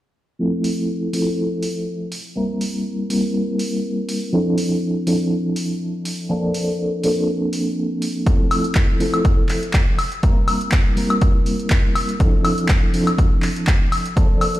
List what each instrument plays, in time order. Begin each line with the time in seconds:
0.39 reed electric piano F3 A3 C4 E4 A4
0.64 open hi-hat
1.13 reed electric piano F3 A3 C4 E4 A4, open hi-hat
1.63 open hi-hat
2.12 open hi-hat
2.35 reed electric piano G3 A#3 C4 E4 A#4
2.61 open hi-hat
3.09 reed electric piano G3 A#3 C4 E4 A#4, open hi-hat
3.59 open hi-hat
4.09 open hi-hat
4.32 reed electric piano F3 C4 D4 E4 A4
4.58 open hi-hat
5.06 reed electric piano F3 C4 D4 E4 A4, open hi-hat
5.56 open hi-hat
6.05 open hi-hat
6.29 reed electric piano F3 A#3 C4 D4 A4
6.54 open hi-hat
7.03 reed electric piano F3 A#3 C4 D4 A4, open hi-hat
7.53 open hi-hat
8.02 open hi-hat
8.26 reed electric piano F3 A3 C4 E4 A4, kick, closed hi-hat
8.51 open hi-hat, high woodblock
8.64 closed hi-hat
8.75 kick, clap, closed hi-hat
9.00 reed electric piano F3 A3 C4 E4 A4, open hi-hat
9.14 closed hi-hat, high woodblock
9.25 kick, closed hi-hat
9.49 clap, open hi-hat
9.63 closed hi-hat
9.73 kick, clap, closed hi-hat
9.99 open hi-hat, high woodblock
10.12 closed hi-hat
10.23 reed electric piano G3 A#3 C4 E4 A#4, kick, closed hi-hat
10.48 open hi-hat, high woodblock
10.61 closed hi-hat
10.72 kick, clap, closed hi-hat
10.96 reed electric piano G3 A#3 C4 E4 A#4, open hi-hat
11.10 closed hi-hat, high woodblock
11.21 kick, closed hi-hat
11.46 open hi-hat
11.60 closed hi-hat
11.70 kick, clap, closed hi-hat
11.95 open hi-hat, high woodblock
12.09 closed hi-hat
12.19 reed electric piano F3 C4 D4 E4 A4, kick, closed hi-hat
12.45 open hi-hat, high woodblock
12.58 closed hi-hat
12.69 kick, clap, closed hi-hat
12.93 reed electric piano F3 C4 D4 E4 A4, open hi-hat
13.07 closed hi-hat, high woodblock
13.18 kick, closed hi-hat
13.42 clap, open hi-hat
13.56 closed hi-hat
13.67 kick, clap, closed hi-hat
13.92 open hi-hat, high woodblock
14.06 closed hi-hat
14.16 reed electric piano F3 A#3 C4 D4 A4, kick, closed hi-hat
14.41 open hi-hat, high woodblock
14.55 closed hi-hat